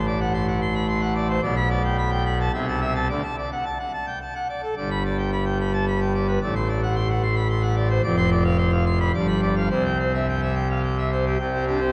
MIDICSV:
0, 0, Header, 1, 2, 480
1, 0, Start_track
1, 0, Tempo, 544959
1, 1264, Time_signature, 3, 2, 24, 8
1, 2229, Tempo, 556586
1, 5109, Tempo, 544959
1, 7989, Tempo, 562852
1, 10361, End_track
2, 0, Start_track
2, 0, Title_t, "Pipe organ"
2, 0, Program_c, 0, 19
2, 0, Note_on_c, 0, 33, 78
2, 0, Note_on_c, 0, 45, 73
2, 63, Note_on_c, 0, 74, 68
2, 172, Note_off_c, 0, 74, 0
2, 179, Note_on_c, 0, 78, 73
2, 289, Note_off_c, 0, 78, 0
2, 297, Note_on_c, 0, 84, 67
2, 408, Note_off_c, 0, 84, 0
2, 420, Note_on_c, 0, 78, 69
2, 530, Note_off_c, 0, 78, 0
2, 540, Note_on_c, 0, 84, 78
2, 650, Note_off_c, 0, 84, 0
2, 657, Note_on_c, 0, 83, 60
2, 763, Note_off_c, 0, 83, 0
2, 777, Note_on_c, 0, 84, 82
2, 886, Note_on_c, 0, 78, 72
2, 888, Note_off_c, 0, 84, 0
2, 1001, Note_off_c, 0, 78, 0
2, 1015, Note_on_c, 0, 74, 81
2, 1126, Note_off_c, 0, 74, 0
2, 1137, Note_on_c, 0, 72, 71
2, 1226, Note_off_c, 0, 45, 0
2, 1227, Note_off_c, 0, 33, 0
2, 1242, Note_off_c, 0, 72, 0
2, 1252, Note_on_c, 0, 74, 78
2, 1253, Note_on_c, 0, 35, 88
2, 1253, Note_on_c, 0, 47, 87
2, 1364, Note_off_c, 0, 74, 0
2, 1376, Note_on_c, 0, 83, 99
2, 1486, Note_off_c, 0, 83, 0
2, 1497, Note_on_c, 0, 74, 78
2, 1607, Note_off_c, 0, 74, 0
2, 1624, Note_on_c, 0, 79, 83
2, 1731, Note_off_c, 0, 79, 0
2, 1742, Note_on_c, 0, 83, 81
2, 1850, Note_off_c, 0, 83, 0
2, 1859, Note_on_c, 0, 79, 70
2, 1969, Note_off_c, 0, 79, 0
2, 1987, Note_on_c, 0, 83, 86
2, 2095, Note_off_c, 0, 83, 0
2, 2116, Note_on_c, 0, 81, 66
2, 2194, Note_off_c, 0, 35, 0
2, 2194, Note_off_c, 0, 47, 0
2, 2216, Note_off_c, 0, 81, 0
2, 2236, Note_on_c, 0, 48, 84
2, 2237, Note_on_c, 0, 76, 78
2, 2239, Note_on_c, 0, 36, 87
2, 2341, Note_off_c, 0, 76, 0
2, 2359, Note_on_c, 0, 81, 86
2, 2462, Note_off_c, 0, 81, 0
2, 2470, Note_on_c, 0, 76, 75
2, 2577, Note_off_c, 0, 76, 0
2, 2593, Note_on_c, 0, 81, 71
2, 2694, Note_off_c, 0, 81, 0
2, 2700, Note_off_c, 0, 48, 0
2, 2702, Note_off_c, 0, 36, 0
2, 2713, Note_on_c, 0, 50, 76
2, 2715, Note_on_c, 0, 74, 77
2, 2716, Note_on_c, 0, 38, 73
2, 2815, Note_off_c, 0, 50, 0
2, 2817, Note_off_c, 0, 38, 0
2, 2821, Note_off_c, 0, 74, 0
2, 2830, Note_on_c, 0, 81, 90
2, 2939, Note_off_c, 0, 81, 0
2, 2959, Note_on_c, 0, 74, 63
2, 3064, Note_off_c, 0, 74, 0
2, 3082, Note_on_c, 0, 78, 67
2, 3186, Note_off_c, 0, 78, 0
2, 3198, Note_on_c, 0, 81, 64
2, 3304, Note_off_c, 0, 81, 0
2, 3320, Note_on_c, 0, 78, 57
2, 3424, Note_off_c, 0, 78, 0
2, 3436, Note_on_c, 0, 81, 66
2, 3542, Note_off_c, 0, 81, 0
2, 3554, Note_on_c, 0, 79, 49
2, 3656, Note_off_c, 0, 79, 0
2, 3683, Note_on_c, 0, 81, 63
2, 3786, Note_off_c, 0, 81, 0
2, 3799, Note_on_c, 0, 78, 57
2, 3905, Note_off_c, 0, 78, 0
2, 3919, Note_on_c, 0, 74, 63
2, 4025, Note_off_c, 0, 74, 0
2, 4038, Note_on_c, 0, 69, 53
2, 4139, Note_off_c, 0, 69, 0
2, 4158, Note_on_c, 0, 43, 73
2, 4159, Note_on_c, 0, 74, 64
2, 4161, Note_on_c, 0, 31, 70
2, 4264, Note_off_c, 0, 74, 0
2, 4279, Note_on_c, 0, 83, 75
2, 4384, Note_off_c, 0, 83, 0
2, 4401, Note_on_c, 0, 74, 66
2, 4505, Note_off_c, 0, 74, 0
2, 4517, Note_on_c, 0, 79, 69
2, 4623, Note_off_c, 0, 79, 0
2, 4638, Note_on_c, 0, 83, 63
2, 4743, Note_off_c, 0, 83, 0
2, 4751, Note_on_c, 0, 79, 57
2, 4858, Note_off_c, 0, 79, 0
2, 4879, Note_on_c, 0, 83, 69
2, 4982, Note_off_c, 0, 83, 0
2, 4990, Note_on_c, 0, 81, 53
2, 5091, Note_off_c, 0, 81, 0
2, 5114, Note_on_c, 0, 83, 69
2, 5219, Note_off_c, 0, 83, 0
2, 5229, Note_on_c, 0, 79, 59
2, 5337, Note_off_c, 0, 79, 0
2, 5350, Note_on_c, 0, 74, 62
2, 5457, Note_off_c, 0, 74, 0
2, 5467, Note_on_c, 0, 71, 66
2, 5557, Note_off_c, 0, 43, 0
2, 5558, Note_off_c, 0, 31, 0
2, 5570, Note_off_c, 0, 71, 0
2, 5589, Note_on_c, 0, 33, 73
2, 5590, Note_on_c, 0, 74, 66
2, 5591, Note_on_c, 0, 45, 75
2, 5697, Note_off_c, 0, 74, 0
2, 5711, Note_on_c, 0, 84, 89
2, 5818, Note_off_c, 0, 84, 0
2, 5823, Note_on_c, 0, 74, 70
2, 5932, Note_off_c, 0, 74, 0
2, 5952, Note_on_c, 0, 78, 73
2, 6057, Note_off_c, 0, 78, 0
2, 6064, Note_on_c, 0, 84, 73
2, 6172, Note_off_c, 0, 84, 0
2, 6186, Note_on_c, 0, 78, 62
2, 6294, Note_off_c, 0, 78, 0
2, 6304, Note_on_c, 0, 84, 77
2, 6412, Note_off_c, 0, 84, 0
2, 6419, Note_on_c, 0, 83, 58
2, 6523, Note_off_c, 0, 83, 0
2, 6540, Note_on_c, 0, 84, 80
2, 6649, Note_off_c, 0, 84, 0
2, 6650, Note_on_c, 0, 78, 72
2, 6763, Note_off_c, 0, 78, 0
2, 6771, Note_on_c, 0, 74, 83
2, 6883, Note_off_c, 0, 74, 0
2, 6893, Note_on_c, 0, 72, 73
2, 6986, Note_off_c, 0, 33, 0
2, 6987, Note_off_c, 0, 45, 0
2, 6999, Note_off_c, 0, 72, 0
2, 7016, Note_on_c, 0, 29, 92
2, 7016, Note_on_c, 0, 74, 84
2, 7017, Note_on_c, 0, 41, 92
2, 7125, Note_off_c, 0, 74, 0
2, 7138, Note_on_c, 0, 84, 112
2, 7246, Note_off_c, 0, 84, 0
2, 7259, Note_on_c, 0, 74, 79
2, 7367, Note_off_c, 0, 74, 0
2, 7376, Note_on_c, 0, 77, 86
2, 7486, Note_off_c, 0, 77, 0
2, 7494, Note_on_c, 0, 84, 85
2, 7606, Note_off_c, 0, 84, 0
2, 7620, Note_on_c, 0, 77, 74
2, 7730, Note_off_c, 0, 77, 0
2, 7741, Note_on_c, 0, 84, 89
2, 7851, Note_off_c, 0, 84, 0
2, 7863, Note_on_c, 0, 83, 65
2, 7957, Note_off_c, 0, 29, 0
2, 7958, Note_off_c, 0, 41, 0
2, 7969, Note_off_c, 0, 83, 0
2, 7988, Note_on_c, 0, 31, 86
2, 7991, Note_on_c, 0, 74, 75
2, 7992, Note_on_c, 0, 43, 84
2, 8096, Note_off_c, 0, 74, 0
2, 8104, Note_on_c, 0, 83, 90
2, 8213, Note_off_c, 0, 83, 0
2, 8230, Note_on_c, 0, 74, 70
2, 8337, Note_off_c, 0, 74, 0
2, 8352, Note_on_c, 0, 77, 64
2, 8454, Note_off_c, 0, 77, 0
2, 8455, Note_off_c, 0, 31, 0
2, 8458, Note_off_c, 0, 43, 0
2, 8468, Note_on_c, 0, 36, 74
2, 8470, Note_on_c, 0, 72, 71
2, 8471, Note_on_c, 0, 48, 73
2, 8579, Note_off_c, 0, 72, 0
2, 8594, Note_on_c, 0, 79, 82
2, 8702, Note_off_c, 0, 79, 0
2, 8719, Note_on_c, 0, 72, 60
2, 8825, Note_off_c, 0, 72, 0
2, 8842, Note_on_c, 0, 76, 64
2, 8947, Note_off_c, 0, 76, 0
2, 8965, Note_on_c, 0, 79, 63
2, 9069, Note_off_c, 0, 79, 0
2, 9080, Note_on_c, 0, 76, 58
2, 9187, Note_off_c, 0, 76, 0
2, 9195, Note_on_c, 0, 79, 63
2, 9304, Note_off_c, 0, 79, 0
2, 9321, Note_on_c, 0, 77, 49
2, 9422, Note_off_c, 0, 77, 0
2, 9438, Note_on_c, 0, 79, 60
2, 9546, Note_off_c, 0, 79, 0
2, 9556, Note_on_c, 0, 76, 48
2, 9665, Note_off_c, 0, 76, 0
2, 9677, Note_on_c, 0, 72, 59
2, 9785, Note_off_c, 0, 72, 0
2, 9795, Note_on_c, 0, 67, 48
2, 9883, Note_off_c, 0, 36, 0
2, 9884, Note_off_c, 0, 48, 0
2, 9898, Note_off_c, 0, 67, 0
2, 9911, Note_on_c, 0, 36, 81
2, 9912, Note_on_c, 0, 79, 89
2, 9914, Note_on_c, 0, 48, 74
2, 10027, Note_on_c, 0, 60, 60
2, 10125, Note_off_c, 0, 79, 0
2, 10136, Note_off_c, 0, 60, 0
2, 10146, Note_on_c, 0, 62, 55
2, 10146, Note_on_c, 0, 67, 62
2, 10250, Note_off_c, 0, 62, 0
2, 10262, Note_on_c, 0, 60, 65
2, 10360, Note_off_c, 0, 67, 0
2, 10361, Note_off_c, 0, 36, 0
2, 10361, Note_off_c, 0, 48, 0
2, 10361, Note_off_c, 0, 60, 0
2, 10361, End_track
0, 0, End_of_file